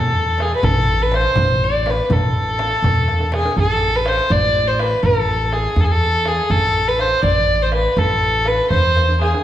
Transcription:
Already playing: upright bass E2, violin A4
0.38 violin G#4, tombak tek, frame drum
0.56 violin B4
0.63 upright bass A1, violin A4, frame drum, tombak dum
1.02 violin B4
1.12 violin C5, tombak tek, frame drum
1.36 upright bass A1, frame drum, tombak dum
1.64 violin D5
1.86 violin B4, tombak tek, frame drum
2.03 violin B4
2.10 upright bass A1, violin A4, frame drum, tombak dum
2.59 tombak tek, frame drum
2.82 upright bass E2, frame drum, tombak dum
3.08 tombak tek
3.20 tombak ka
3.32 violin G#4, tombak tek, frame drum
3.45 tombak ka
3.57 upright bass A1, violin A4, tombak dum
3.96 violin B4
4.06 violin C5, tombak tek
4.30 upright bass A1, violin D5, tombak dum
4.68 violin C5
4.79 violin B4, tombak tek
5.03 upright bass A1, violin A4, tombak dum
5.52 violin G#4, tombak tek
5.76 upright bass E2, tombak dum
5.80 violin A4
5.84 violin G#4
5.91 violin A4
6.25 violin G#4, tombak tek
6.50 upright bass A1, violin A4, tombak dum
6.88 violin B4
6.99 violin C5, tombak tek
7.23 upright bass A1, violin D5, tombak dum
7.62 violin C5
7.72 violin B4, tombak tek
7.92 violin B4
7.97 upright bass A1, violin A4, tombak dum
8.45 violin B4, tombak tek
8.70 upright bass E2, violin C5, tombak dum
8.96 tombak tek
9.09 tombak ka
9.21 violin G#4, tombak tek
9.34 tombak ka

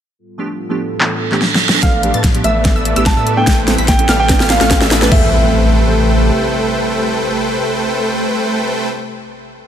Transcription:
0.19 analog synth pad A2 G3 B3 F4 A4
0.38 synth keys F3 A3 B3 D4 G4
0.69 synth keys F3 A3 B3 D4 G4
0.99 synth keys E3 A3 B3 D4 A4, analog synth pad E3 D4, clap, reverse cymbal
1.31 synth keys E3 A3 B3 D4 G4, clap
1.42 snare
1.55 snare
1.69 synth keys E3 A3, snare
1.73 synth keys B3 D4 A4
1.82 sub bass A1, analog synth pad F3 A3 B3 G4, supersaw synth A3 A4 B4 D5 F5, grand piano F5, synth pluck F6, kick, snare, closed hi-hat, riser
2.02 synth keys F3 A3 B3 D4 G4, closed hi-hat
2.14 sub bass A2, supersaw synth A3 A4 B4 D5 A5, synth pluck A6, closed hi-hat
2.24 kick, snare, closed hi-hat
2.34 synth keys F3 A3 B3 D4 G4, closed hi-hat
2.44 sub bass A1, supersaw synth A3 A4 B4 D5 E5, grand piano E5, synth pluck E6, closed hi-hat
2.64 analog synth pad D3 E4, synth keys E3 A3 B3 D4 A4, kick, snare, closed hi-hat
2.75 sub bass A1, supersaw synth A3 A4 B4 D5 E5, synth pluck E6
2.85 closed hi-hat
2.95 sub bass A1, synth keys E3 A3 B3 D4 G4, supersaw synth A3 A4 B4 D5 E5, synth pluck E6, closed hi-hat
3.06 grand piano A5, kick, snare, closed hi-hat
3.17 sub bass A2, supersaw synth A3 A4 B4 D5 E5, synth pluck E6
3.27 closed hi-hat
3.36 synth keys E3 A3 B3 D4 A4, grand piano G5
3.47 sub bass A1, analog synth pad C3 G4, supersaw synth A3 A4 B4 C5 G5, synth pluck G6, kick, snare, closed hi-hat
3.67 synth keys G3 B3 C4 E4 A4, snare, closed hi-hat
3.78 sub bass A1, supersaw synth A3 A4 B4 C5 B5, synth pluck B6, closed hi-hat
3.88 grand piano G5, kick, snare, closed hi-hat
3.98 synth keys G3 B3 C4 E4 A4, closed hi-hat
4.09 sub bass A1, supersaw synth A3 A4 B4 D5 F5, synth pluck F6, snare, closed hi-hat
4.19 grand piano G5
4.28 analog synth pad D3 F4, synth keys A3 B3 D4 F4 B4, kick, snare, closed hi-hat
4.40 sub bass A1, supersaw synth A3 A4 B4 D5 F5, synth pluck F6, snare
4.50 grand piano F5, snare, closed hi-hat
4.60 sub bass A1, synth keys A3 B3 D4 F4 A4, supersaw synth A3 A4 B4 D5 F5, synth pluck F6, snare, closed hi-hat
4.71 kick, snare, closed hi-hat
4.81 sub bass A1, supersaw synth A3 A4 B4 D5 E5, synth pluck E6, snare
4.91 snare, closed hi-hat
5.01 synth keys A3 B3 D4 F4 B4, snare
5.09 sub bass A1, analog synth pad C3 A3 G4, synth keys G3 C4, supersaw synth A3 A4 B4 C5 G5, grand piano E5, synth pluck G6, kick, crash, impact
5.15 synth keys A4

